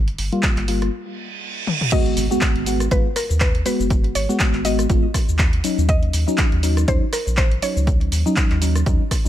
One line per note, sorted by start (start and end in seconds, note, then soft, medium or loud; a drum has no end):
0.00 0.15 G1 loud
0.00 1.39 A#4 medium
0.08 closed hi-hat medium
0.18 0.30 G1 loud
0.18 open hi-hat loud
0.32 0.65 G3 medium
0.32 0.65 A#3 medium
0.32 0.66 F4 loud
0.32 closed hi-hat soft
0.43 kick loud
0.43 clap loud
0.43 closed hi-hat medium
0.57 0.89 G1 loud
0.57 clap soft
0.57 closed hi-hat medium
0.68 0.90 G3 medium
0.68 0.90 A#3 medium
0.68 0.90 F4 medium
0.68 open hi-hat loud
0.82 cross-stick medium
0.82 closed hi-hat soft
0.93 reverse cymbal medium
1.67 high tom medium
1.81 mid tom medium
1.92 2.25 G#3 loud
1.92 2.25 B3 medium
1.92 2.25 F#4 loud
1.92 2.94 D#5 loud
1.92 kick loud
1.92 closed hi-hat medium
1.92 crash loud
1.92 impact medium
1.92 cabasa soft
2.06 closed hi-hat soft
2.17 2.28 G#1 loud
2.17 open hi-hat loud
2.17 cabasa medium
2.31 2.64 G#3 medium
2.31 2.64 B3 medium
2.31 2.64 F#4 loud
2.31 cabasa soft
2.41 kick loud
2.41 clap loud
2.41 closed hi-hat medium
2.41 cabasa soft
2.56 2.88 G#1 loud
2.56 closed hi-hat soft
2.66 2.88 G#3 medium
2.66 2.88 B3 medium
2.66 2.88 F#4 medium
2.66 open hi-hat loud
2.66 cabasa medium
2.80 cross-stick medium
2.80 closed hi-hat medium
2.80 cabasa soft
2.91 3.02 G#1 medium
2.91 3.08 G#3 medium
2.91 3.08 B3 medium
2.91 3.08 F4 loud
2.91 3.14 B4 loud
2.91 kick loud
2.91 closed hi-hat medium
2.91 cabasa soft
3.16 3.42 A#4 medium
3.16 cross-stick medium
3.16 open hi-hat loud
3.16 cabasa medium
3.30 3.62 D#2 medium
3.30 cabasa soft
3.40 3.64 B4 loud
3.40 kick loud
3.40 clap loud
3.40 closed hi-hat medium
3.40 cabasa soft
3.55 closed hi-hat medium
3.65 4.26 G#3 medium
3.65 4.26 B3 medium
3.65 4.26 F#4 medium
3.65 4.17 B4 medium
3.65 open hi-hat loud
3.65 cabasa medium
3.80 4.12 F#1 loud
3.80 cabasa soft
3.90 kick loud
3.90 closed hi-hat medium
3.90 cabasa soft
4.04 closed hi-hat soft
4.15 4.26 G#1 loud
4.15 4.66 C#5 loud
4.15 open hi-hat loud
4.15 cabasa medium
4.29 4.62 G#3 medium
4.29 4.62 B3 medium
4.29 4.62 F#4 loud
4.29 cabasa soft
4.40 kick loud
4.40 clap loud
4.40 closed hi-hat medium
4.40 cabasa soft
4.54 4.86 G#1 loud
4.54 clap soft
4.54 closed hi-hat soft
4.65 4.86 G#3 medium
4.65 4.86 B3 medium
4.65 4.86 F#4 medium
4.65 5.60 D#5 loud
4.65 open hi-hat loud
4.65 cabasa medium
4.79 cross-stick medium
4.79 closed hi-hat medium
4.79 cabasa soft
4.89 5.01 G#1 medium
4.89 5.06 G#3 medium
4.89 5.06 B3 medium
4.89 5.06 F4 medium
4.89 kick loud
4.89 closed hi-hat medium
4.89 cabasa soft
5.14 kick medium
5.14 cross-stick medium
5.14 open hi-hat loud
5.14 cabasa medium
5.28 5.60 D#2 medium
5.28 cabasa soft
5.39 kick loud
5.39 clap loud
5.39 closed hi-hat medium
5.39 cabasa soft
5.53 closed hi-hat medium
5.64 6.24 F#3 medium
5.64 6.24 C#4 medium
5.64 6.24 D#4 medium
5.64 open hi-hat loud
5.64 cabasa medium
5.78 6.10 D#2 loud
5.78 cabasa soft
5.89 6.91 D#5 loud
5.89 kick loud
5.89 closed hi-hat medium
5.89 cabasa soft
6.03 closed hi-hat soft
6.13 6.25 D#2 loud
6.13 open hi-hat loud
6.13 cabasa medium
6.27 6.60 F#3 medium
6.27 6.61 C#4 medium
6.27 6.61 D#4 loud
6.27 cabasa soft
6.38 kick loud
6.38 clap loud
6.38 closed hi-hat medium
6.38 cabasa soft
6.52 6.84 D#2 loud
6.52 closed hi-hat soft
6.63 6.85 F#3 medium
6.63 6.85 C#4 medium
6.63 6.85 D#4 medium
6.63 open hi-hat loud
6.63 cabasa medium
6.77 cross-stick medium
6.77 closed hi-hat medium
6.77 cabasa soft
6.88 6.99 D#2 medium
6.88 7.04 F#3 medium
6.88 7.04 C#4 medium
6.88 7.05 D#4 loud
6.88 7.14 C5 loud
6.88 kick loud
6.88 closed hi-hat medium
6.88 cabasa soft
7.13 7.38 A#4 medium
7.13 cross-stick medium
7.13 open hi-hat loud
7.13 cabasa medium
7.27 7.59 A#1 medium
7.27 cabasa soft
7.37 7.49 C5 loud
7.37 kick loud
7.37 clap loud
7.37 closed hi-hat medium
7.37 cabasa soft
7.51 closed hi-hat soft
7.62 8.22 F#3 medium
7.62 8.23 C#4 medium
7.62 8.23 D#4 medium
7.62 9.07 C#5 medium
7.62 open hi-hat loud
7.62 cabasa medium
7.76 8.08 C#2 loud
7.76 cabasa soft
7.87 kick loud
7.87 closed hi-hat medium
7.87 cabasa soft
8.01 closed hi-hat soft
8.12 8.23 D#2 loud
8.12 open hi-hat loud
8.12 cabasa medium
8.26 8.59 F#3 medium
8.26 8.59 C#4 medium
8.26 8.59 D#4 loud
8.26 cabasa soft
8.36 kick loud
8.36 clap loud
8.36 closed hi-hat medium
8.36 cabasa soft
8.50 8.83 D#2 medium
8.50 clap soft
8.50 closed hi-hat soft
8.61 8.83 F#3 medium
8.61 8.83 C#4 medium
8.61 8.83 D#4 medium
8.61 open hi-hat loud
8.61 cabasa medium
8.76 cross-stick medium
8.76 closed hi-hat medium
8.76 cabasa soft
8.86 8.97 D#2 medium
8.86 9.03 F#3 medium
8.86 9.03 C#4 medium
8.86 9.03 D#4 loud
8.86 kick loud
8.86 closed hi-hat medium
8.86 cabasa soft
9.11 kick medium
9.11 cross-stick medium
9.11 open hi-hat loud
9.11 cabasa medium
9.25 9.29 A#1 medium
9.25 9.29 F#3 medium
9.25 9.29 C#4 medium
9.25 9.29 D#4 medium
9.25 cabasa soft